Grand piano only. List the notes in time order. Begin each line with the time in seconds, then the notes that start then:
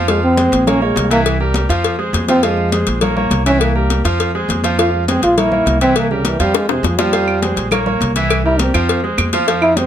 0.08 F3 F4 F5
0.37 G#3 G#4 C5
0.67 A#3 A#4 C#5
0.82 A#3 A#4 C#5
1.10 E3 E4 E5
1.40 G3 G4 A#4
1.69 F3 F4 F5
1.99 G#3 G#4 C5
2.29 F3 F4 F5
2.44 F3 F4 F5
2.72 G#3 G#4 C5
3.02 A#3 A#4 C#5
3.16 A#3 A#4 C#5
3.46 E3 E4 E5
3.75 G3 G4 A#4
4.05 F3 F4 F5
4.35 G#3 G#4 C5
4.64 F3 F4 F5
4.78 F3 F4 F5
5.08 G#3 G#4 C5
5.37 A#3 A#4 C#5
5.52 A#3 A#4 C#5
5.81 E3 E4 E5
6.11 G3 G4 A#4
6.40 F3 F4 F5
6.69 G#3 G#4 C5
6.99 F3 F4 F5
7.13 F3 F4 F5
7.43 G#3 G#4 C5
7.72 A#3 A#4 C#5
7.86 A#3 A#4 C#5
8.16 E3 E4 E5
8.45 G3 G4 A#4
8.74 F3 F4 F5
9.04 G#3 G#4 C5
9.33 F3 F4 F5
9.48 F3 F4 F5
9.76 G#3 G#4 C5